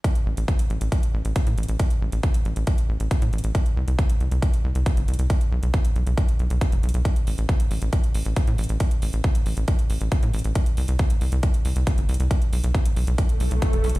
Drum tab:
HH |x-x---x-x-x-x-x-x-x---x-x-x-xxx-|x-x---x-x-x-x-x-x-x---x-x-x-xxx-|x-x---x-x-x-x-x-x-x---x-x-x-xxx-|x-x---x-x-x-x-x-x-x-x-x-x-x-xxx-|
BD |o-------o-------o-------o-------|o-------o-------o-------o-------|o-------o-------o-------o-------|o-------o-------o-------o-------|

HH |x-x-o-x-x-x-o-x-x-x-o-x-x-x-oxx-|x-x-o-x-x-x-o-x-x-x-o-x-x-x-oxx-|x-x-o-x-x-x-o-x-x-x-o-x-x-x-oxx-|x-x-o-x-x-x-o-x-x-x-o-x-x-x-oxx-|
BD |o-------o-------o-------o-------|o-------o-------o-------o-------|o-------o-------o-------o-------|o-------o-------o-------o-------|